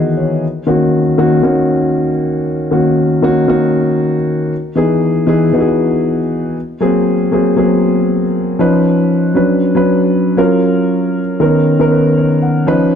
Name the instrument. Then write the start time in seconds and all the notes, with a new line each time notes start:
grand piano
Already playing: D#3 E3 B3 D#4 F#4 G#4 B4 D#5 E5 F#5
0.17 C#5
0.67 D#3 A#3 C#4 F#4
1.18 D#3 A#3 C#4 F#4
1.43 D#3 A#3 C#4 F#4
2.71 D#3 A#3 C#4 F#4
3.22 D#3 A#3 C#4 F#4
3.48 D#3 A#3 C#4 F#4
4.75 E3 B3 D#4 G#4
5.27 E3 B3 D#4 G#4
5.53 E3 B3 D#4 F#4
5.60 G#4
6.80 F#3 A#3 C4 G#4
7.31 F#3 A#3 C4 G#4
7.56 F#3 A#3 B3 G#4
7.64 C4
8.59 F3 C#4 D#4 B4
9.35 F#3 C#4 D4 B4
9.75 F#3 C#4 D4 B4
10.37 F#3 C#4 F4 A#4
11.40 D#3 B3 C#4 A#4
11.79 D#3 B3 C#4 A#4
11.92 B4
12.17 C#5
12.42 F#5
12.67 F3 C#4 D#4 B4